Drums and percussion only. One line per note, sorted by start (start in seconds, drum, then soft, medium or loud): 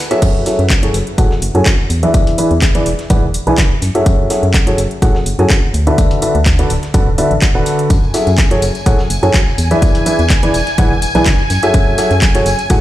0.11 closed hi-hat medium
0.11 tambourine soft
0.22 kick loud
0.22 closed hi-hat medium
0.22 tambourine medium
0.22 crash medium
0.46 snare soft
0.46 open hi-hat loud
0.46 tambourine medium
0.59 closed hi-hat soft
0.70 kick loud
0.70 snare loud
0.70 clap loud
0.70 closed hi-hat medium
0.70 tambourine medium
0.83 closed hi-hat medium
0.94 open hi-hat medium
0.94 tambourine medium
1.07 closed hi-hat soft
1.18 kick loud
1.18 closed hi-hat medium
1.18 tambourine medium
1.31 snare soft
1.42 open hi-hat loud
1.42 tambourine medium
1.55 closed hi-hat soft
1.66 kick loud
1.66 snare loud
1.66 clap loud
1.66 closed hi-hat medium
1.66 tambourine medium
1.90 open hi-hat medium
1.90 tambourine medium
2.03 closed hi-hat medium
2.14 kick loud
2.14 closed hi-hat medium
2.14 tambourine medium
2.27 closed hi-hat soft
2.38 open hi-hat loud
2.38 tambourine medium
2.51 closed hi-hat soft
2.62 kick loud
2.62 snare loud
2.62 clap loud
2.62 closed hi-hat medium
2.62 tambourine medium
2.75 closed hi-hat medium
2.86 open hi-hat medium
2.86 tambourine medium
2.99 snare soft
2.99 closed hi-hat soft
3.10 kick loud
3.10 closed hi-hat medium
3.10 tambourine medium
3.34 open hi-hat loud
3.34 tambourine medium
3.47 closed hi-hat soft
3.58 kick loud
3.58 snare loud
3.58 clap loud
3.58 closed hi-hat medium
3.58 tambourine medium
3.82 snare soft
3.82 open hi-hat loud
3.82 tambourine medium
3.95 closed hi-hat medium
4.06 kick loud
4.06 closed hi-hat medium
4.06 tambourine medium
4.30 snare soft
4.30 open hi-hat loud
4.30 tambourine medium
4.43 closed hi-hat soft
4.54 kick loud
4.54 snare loud
4.54 clap loud
4.54 closed hi-hat medium
4.54 tambourine medium
4.67 closed hi-hat medium
4.78 open hi-hat loud
4.78 tambourine medium
4.91 closed hi-hat soft
5.02 kick loud
5.02 closed hi-hat medium
5.02 tambourine medium
5.15 snare soft
5.26 open hi-hat loud
5.26 tambourine medium
5.39 closed hi-hat soft
5.50 kick loud
5.50 snare loud
5.50 clap loud
5.50 closed hi-hat medium
5.50 tambourine medium
5.74 open hi-hat medium
5.74 tambourine medium
5.87 closed hi-hat medium
5.98 kick loud
5.98 closed hi-hat medium
5.98 tambourine medium
6.11 closed hi-hat soft
6.22 open hi-hat loud
6.22 tambourine medium
6.35 closed hi-hat soft
6.46 kick loud
6.46 snare loud
6.46 clap loud
6.46 closed hi-hat medium
6.46 tambourine medium
6.59 closed hi-hat medium
6.70 open hi-hat loud
6.70 tambourine medium
6.83 snare medium
6.83 closed hi-hat soft
6.94 kick loud
6.94 closed hi-hat medium
6.94 tambourine medium
7.18 open hi-hat loud
7.18 tambourine medium
7.31 closed hi-hat soft
7.42 kick loud
7.42 snare loud
7.42 clap loud
7.42 closed hi-hat medium
7.42 tambourine medium
7.66 snare soft
7.66 open hi-hat medium
7.66 tambourine medium
7.79 closed hi-hat soft
7.90 kick loud
7.90 closed hi-hat medium
7.90 tambourine medium
8.04 tambourine soft
8.14 snare soft
8.14 open hi-hat loud
8.14 tambourine loud
8.14 tambourine medium
8.27 closed hi-hat soft
8.27 tambourine soft
8.38 kick loud
8.38 snare loud
8.38 clap loud
8.38 closed hi-hat medium
8.38 tambourine medium
8.38 tambourine soft
8.50 closed hi-hat medium
8.50 tambourine soft
8.62 open hi-hat medium
8.62 tambourine medium
8.75 closed hi-hat soft
8.75 tambourine soft
8.86 kick loud
8.86 closed hi-hat medium
8.86 tambourine medium
8.86 tambourine soft
8.99 snare soft
8.99 tambourine soft
9.10 open hi-hat loud
9.10 tambourine medium
9.23 closed hi-hat soft
9.23 tambourine soft
9.34 kick loud
9.34 snare loud
9.34 clap loud
9.34 closed hi-hat medium
9.34 tambourine medium
9.47 tambourine soft
9.58 open hi-hat medium
9.58 tambourine medium
9.58 tambourine loud
9.71 closed hi-hat soft
9.71 tambourine soft
9.82 kick loud
9.82 closed hi-hat medium
9.82 tambourine medium
9.95 closed hi-hat soft
9.95 tambourine soft
10.06 open hi-hat loud
10.06 tambourine medium
10.19 closed hi-hat soft
10.19 tambourine soft
10.30 kick loud
10.30 snare loud
10.30 clap loud
10.30 closed hi-hat medium
10.30 tambourine soft
10.30 tambourine medium
10.42 closed hi-hat medium
10.42 tambourine soft
10.54 open hi-hat medium
10.54 tambourine medium
10.67 snare soft
10.67 closed hi-hat soft
10.67 tambourine soft
10.78 kick loud
10.78 closed hi-hat medium
10.78 tambourine medium
10.78 tambourine soft
10.91 tambourine soft
11.02 open hi-hat loud
11.02 tambourine medium
11.15 closed hi-hat soft
11.15 tambourine soft
11.26 kick loud
11.26 snare loud
11.26 clap loud
11.26 closed hi-hat medium
11.26 tambourine medium
11.39 tambourine soft
11.50 snare soft
11.50 open hi-hat medium
11.50 tambourine medium
11.63 closed hi-hat medium
11.63 tambourine soft
11.74 kick loud
11.74 closed hi-hat medium
11.74 tambourine medium
11.74 tambourine soft
11.87 tambourine soft
11.98 snare soft
11.98 open hi-hat loud
11.98 tambourine medium
12.11 closed hi-hat soft
12.11 tambourine soft
12.22 kick loud
12.22 snare loud
12.22 clap loud
12.22 closed hi-hat medium
12.22 tambourine medium
12.22 tambourine soft
12.35 closed hi-hat medium
12.35 tambourine soft
12.46 open hi-hat medium
12.46 tambourine medium
12.59 closed hi-hat soft
12.59 tambourine soft
12.70 kick loud
12.70 closed hi-hat medium
12.70 tambourine medium